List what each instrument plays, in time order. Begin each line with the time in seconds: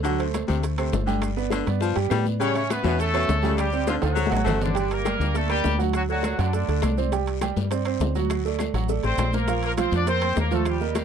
Already playing: fingered electric bass D2
0.03 baritone saxophone D3, grand piano F#3 F#4 F#5, high bongo, high conga, high timbale, long guiro, maracas
0.19 grand piano A3 A4 C5, high conga, high timbale, maracas
0.34 high bongo, high conga, high timbale, low timbale, short guiro, claves, maracas
0.48 fingered electric bass D2, baritone saxophone C3, grand piano A3 A4 C5, high conga, short guiro, maracas
0.63 high bongo, high conga, high timbale, long guiro, maracas
0.78 baritone saxophone C3, grand piano A3 A4 C5, high conga, high timbale, claves, maracas
0.92 fingered electric bass G1, high bongo, low bongo, high conga, low timbale, short guiro, maracas
1.06 baritone saxophone D3, grand piano G3 G4 G5, high conga, short guiro, maracas
1.22 high bongo, high conga, high timbale, long guiro, claves, maracas
1.37 grand piano B3 B4 D5, high bongo, high conga, maracas
1.50 baritone saxophone D3, high bongo, high conga, high timbale, low timbale, short guiro, claves, maracas
1.65 fingered electric bass G2, grand piano B3 B4 D5, high bongo, high conga, high timbale, short guiro, maracas
1.80 baritone saxophone F3, high bongo, high conga, long guiro, maracas
1.96 fingered electric bass G2, grand piano G3 G4 G5, high bongo, high conga, high timbale, maracas
2.10 fingered electric bass A2, baritone saxophone G3, grand piano B3 B4 D5, high bongo, low bongo, high conga, high timbale, low timbale, short guiro, claves, maracas
2.26 high conga, short guiro, maracas
2.40 baritone saxophone C#3, grand piano G3 G4 G5, horn section C#4 C#5, high bongo, high conga, high timbale, long guiro, maracas
2.54 grand piano C#4 C#5 E5, horn section C#4 C#5, high conga, high timbale, maracas
2.70 horn section B3 B4, high bongo, high conga, high timbale, low timbale, short guiro, claves, maracas
2.83 fingered electric bass E2, baritone saxophone B2, horn section B3 B4, grand piano C#4 C#5 E5, high conga, short guiro, maracas
2.99 horn section A3 A4, high bongo, high conga, high timbale, long guiro, maracas
3.14 baritone saxophone B2, grand piano C#4 C#5 E5, high conga, high timbale, claves, maracas
3.28 fingered electric bass D2, high bongo, low bongo, high conga, low timbale, short guiro, maracas
3.42 baritone saxophone C#3, grand piano G3 G4 G5, high conga, short guiro, maracas
3.57 horn section G3 G4, high bongo, high conga, high timbale, long guiro, claves, maracas
3.72 grand piano C4 C5 D5, high bongo, high conga, maracas
3.87 baritone saxophone D3, horn section F3 F4, high bongo, high conga, high timbale, short guiro, claves, maracas
4.02 fingered electric bass D2, horn section F#3 F#4, grand piano A3 A4 C5, high bongo, high timbale, short guiro, maracas
4.15 baritone saxophone F#3, high bongo, high conga, long guiro, maracas
4.26 grand piano F#3, high bongo, high conga
4.31 fingered electric bass A1, grand piano F#4 F#5, low timbale, maracas
4.36 low bongo
4.44 fingered electric bass G1, baritone saxophone A3, grand piano A3 A4 C5, low conga, low timbale, short guiro, claves, maracas
4.61 horn section D3 D4, low timbale, short guiro, maracas
4.66 low bongo, low conga
4.75 horn section D3 D4, grand piano G3 G4 G5, high bongo, high conga, high timbale, long guiro, maracas
4.91 horn section A#3 A#4, high conga, high timbale, maracas
5.05 grand piano G3 G4 G5, high bongo, high conga, high timbale, low timbale, short guiro, claves, maracas
5.20 fingered electric bass D2, high conga, short guiro, maracas
5.34 horn section A3 A4, grand piano A#3 A#4 D5, high bongo, high conga, high timbale, long guiro, maracas
5.49 horn section G3 G4, grand piano A#3 A#4 D5, high conga, high timbale, claves, maracas
5.64 fingered electric bass D2, high bongo, low bongo, high conga, low timbale, short guiro, maracas
5.78 grand piano F#3 F#4 F#5, high conga, short guiro, maracas
5.93 horn section F#3 F#4, high bongo, high conga, high timbale, long guiro, claves, maracas
6.09 horn section F#3 F#4, grand piano A3 A4 D5, high bongo, high conga, maracas
6.23 high bongo, high conga, high timbale, low timbale, short guiro, claves, maracas
6.38 fingered electric bass F#2, horn section D3 D4, grand piano F#3 F#4 F#5, high bongo, high conga, high timbale, short guiro, maracas
6.53 grand piano A3 A4 D5, high bongo, high conga, long guiro, maracas
6.68 fingered electric bass D2, grand piano A3 A4 D5, high bongo, high conga, high timbale, maracas
6.82 fingered electric bass C2, high bongo, low bongo, high conga, high timbale, low timbale, short guiro, claves, maracas
6.98 grand piano C4 C5 D5, high conga, short guiro, maracas
7.12 grand piano G3 G4 G5, high bongo, high timbale, long guiro, maracas
7.27 high conga, high timbale, maracas
7.41 grand piano G3 G4 G5, high bongo, high conga, high timbale, low timbale, short guiro, claves, maracas
7.56 fingered electric bass G2, high conga, short guiro, maracas
7.71 grand piano C4 C5 D5, high bongo, high conga, high timbale, long guiro, maracas
7.85 grand piano C4 C5 D5, high conga, high timbale, claves, maracas
8.00 fingered electric bass D2, high bongo, low bongo, high conga, low timbale, short guiro, maracas
8.15 grand piano F#3 F#4 F#5, high conga, short guiro, maracas
8.30 high bongo, high timbale, long guiro, claves, maracas
8.45 grand piano A3 A4 D5, high bongo, high conga, maracas
8.59 high bongo, high conga, high timbale, low timbale, short guiro, claves, maracas
8.74 fingered electric bass A1, grand piano F#3 F#4 F#5, high bongo, high conga, high timbale, short guiro, maracas
8.89 grand piano A3 A4 D5, high bongo, high conga, long guiro, maracas
9.03 fingered electric bass A1, grand piano A3 A4 D5, horn section C4 C5, high bongo, high conga, high timbale, maracas
9.18 fingered electric bass A#1, low bongo, high conga, high timbale, low timbale, short guiro, claves, maracas
9.33 grand piano A#3 A#4 C5, horn section A#3 A#4, low bongo, high conga, short guiro, maracas
9.48 grand piano F3 F4 F5, high bongo, high conga, high timbale, long guiro, maracas
9.63 horn section A#3 A#4, high conga, high timbale, maracas
9.77 grand piano F3 F4 F5, horn section C4 C5, high bongo, high conga, high timbale, low timbale, short guiro, claves, maracas
9.91 fingered electric bass F2, horn section D4 D5, high conga, short guiro, maracas
10.07 grand piano A#3 A#4 C5, horn section C4 C5, high bongo, high conga, high timbale, long guiro, maracas
10.22 grand piano A#3 A#4 C5, high conga, high timbale, claves, maracas
10.36 fingered electric bass D#2, horn section A#3 A#4, high bongo, low bongo, high conga, low timbale, short guiro, maracas
10.51 grand piano F3 F4 F5, horn section A3 A4, high conga, short guiro, maracas
10.65 horn section G3 G4, high bongo, high timbale, long guiro, claves, maracas
10.80 grand piano A#3 A#4 D#5, high bongo, high conga, maracas
10.95 high bongo, high conga, high timbale, low timbale, short guiro, claves, maracas